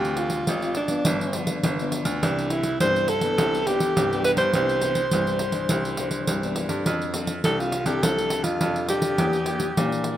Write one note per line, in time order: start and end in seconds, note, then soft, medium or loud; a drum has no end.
0.00 0.40 D2 loud
0.00 0.46 D3 medium
0.00 0.28 A3 medium
0.00 0.28 C4 soft
0.00 0.28 F4 medium
0.00 0.20 G4 loud
0.05 pandeiro soft
0.17 0.76 F4 medium
0.17 pandeiro medium
0.30 pandeiro medium
0.47 0.98 G#1 medium
0.47 0.76 A3 medium
0.47 0.76 C4 medium
0.47 0.76 F4 medium
0.47 pandeiro medium
0.62 pandeiro soft
0.75 1.60 D4 medium
0.75 pandeiro medium
0.88 1.30 F3 medium
0.88 1.30 B3 medium
0.88 1.30 D4 medium
0.88 pandeiro medium
1.05 1.56 G1 loud
1.05 1.62 G2 medium
1.05 pandeiro medium
1.21 pandeiro soft
1.33 1.74 F3 medium
1.33 1.74 B3 medium
1.33 1.74 D4 medium
1.33 pandeiro medium
1.47 pandeiro medium
1.63 2.02 G1 medium
1.63 2.20 D3 medium
1.63 pandeiro medium
1.79 2.19 F3 medium
1.79 2.19 B3 medium
1.79 2.20 D4 medium
1.79 pandeiro soft
1.92 pandeiro medium
2.05 2.19 D2 medium
2.05 pandeiro medium
2.23 2.72 C2 loud
2.23 2.78 C3 medium
2.23 2.61 E3 medium
2.23 2.61 B3 medium
2.23 2.52 D4 medium
2.23 2.61 D4 medium
2.23 pandeiro medium
2.39 pandeiro soft
2.50 2.80 E4 medium
2.50 pandeiro medium
2.63 pandeiro medium
2.80 3.30 C2 medium
2.80 3.36 G2 medium
2.80 3.08 E3 medium
2.80 3.09 B3 medium
2.80 3.09 D4 medium
2.80 3.11 C5 loud
2.80 pandeiro medium
2.96 pandeiro soft
3.08 3.69 A4 loud
3.08 pandeiro medium
3.21 3.62 E3 medium
3.21 3.62 B3 medium
3.21 3.63 D4 medium
3.21 pandeiro medium
3.38 3.88 C2 loud
3.38 3.94 C3 medium
3.38 pandeiro medium
3.55 pandeiro soft
3.67 4.07 E3 medium
3.67 4.07 B3 medium
3.67 4.07 D4 medium
3.67 4.24 G4 loud
3.67 pandeiro medium
3.80 pandeiro medium
3.96 4.34 C2 medium
3.96 4.52 G2 medium
3.96 pandeiro medium
4.13 4.51 E3 medium
4.13 4.51 B3 medium
4.13 4.52 D4 medium
4.13 pandeiro soft
4.24 4.31 B4 loud
4.24 pandeiro medium
4.37 4.51 G2 medium
4.37 6.53 C5 loud
4.37 pandeiro medium
4.53 5.04 C2 loud
4.53 5.10 C3 medium
4.53 4.79 E3 medium
4.53 4.79 B3 medium
4.53 4.80 D4 medium
4.53 pandeiro medium
4.69 pandeiro soft
4.81 5.00 E3 soft
4.81 5.00 B3 soft
4.81 5.01 D4 medium
4.81 pandeiro medium
4.95 pandeiro soft
5.11 5.62 C2 medium
5.11 5.68 G2 medium
5.11 5.40 E3 medium
5.11 5.40 B3 medium
5.11 5.40 D4 medium
5.11 pandeiro medium
5.27 pandeiro soft
5.39 pandeiro medium
5.52 5.94 E3 medium
5.52 5.94 D4 medium
5.52 pandeiro medium
5.69 6.20 C2 medium
5.69 6.25 C3 medium
5.69 pandeiro medium
5.85 pandeiro soft
5.97 6.38 E3 soft
5.97 6.38 D4 medium
5.97 pandeiro medium
6.11 pandeiro medium
6.27 6.65 C2 medium
6.27 6.84 G2 soft
6.27 pandeiro medium
6.43 6.68 E3 medium
6.43 6.68 B3 medium
6.43 6.68 D4 medium
6.43 pandeiro soft
6.56 pandeiro medium
6.69 6.83 G2 medium
6.69 7.10 C4 medium
6.69 7.10 D4 medium
6.69 7.10 A4 medium
6.69 pandeiro medium
6.86 7.36 F2 medium
6.86 7.42 F3 medium
6.86 pandeiro medium
7.02 pandeiro soft
7.14 7.32 C4 medium
7.14 7.33 D4 soft
7.14 7.33 A4 medium
7.14 pandeiro medium
7.27 pandeiro medium
7.44 7.82 C2 medium
7.44 8.01 C3 medium
7.44 7.73 C4 medium
7.44 7.73 D4 medium
7.44 7.61 A4 medium
7.44 7.73 A4 medium
7.44 pandeiro medium
7.60 7.88 F4 medium
7.60 pandeiro soft
7.72 pandeiro medium
7.86 7.99 C2 medium
7.86 8.11 C4 medium
7.86 8.12 D4 medium
7.86 8.05 G4 medium
7.86 8.12 A4 medium
7.86 pandeiro medium
8.03 8.40 C2 medium
8.03 8.58 F3 medium
8.03 8.45 A4 loud
8.03 pandeiro medium
8.18 8.58 C4 medium
8.18 8.58 D4 medium
8.18 8.58 A4 medium
8.18 pandeiro soft
8.30 pandeiro medium
8.44 8.57 F2 medium
8.44 8.89 F4 medium
8.44 pandeiro medium
8.61 9.19 F2 medium
8.61 9.17 C3 medium
8.61 8.86 C4 medium
8.61 8.86 D4 medium
8.61 8.86 A4 medium
8.61 pandeiro medium
8.76 pandeiro soft
8.88 9.16 C4 medium
8.88 9.17 D4 medium
8.88 10.02 G4 medium
8.88 9.17 A4 medium
8.88 pandeiro medium
9.02 pandeiro medium
9.18 9.69 E2 medium
9.18 9.75 E3 medium
9.18 9.36 A#3 medium
9.18 9.37 D4 medium
9.18 9.37 G4 medium
9.18 pandeiro medium
9.33 pandeiro soft
9.46 9.65 A#3 medium
9.46 9.65 D4 medium
9.46 9.65 G4 medium
9.46 pandeiro medium
9.60 pandeiro medium
9.77 10.15 A#2 medium
9.77 10.17 E3 medium
9.77 10.04 A#3 medium
9.77 10.05 D4 medium
9.77 10.05 G4 medium
9.77 pandeiro medium
9.92 pandeiro soft
10.04 pandeiro medium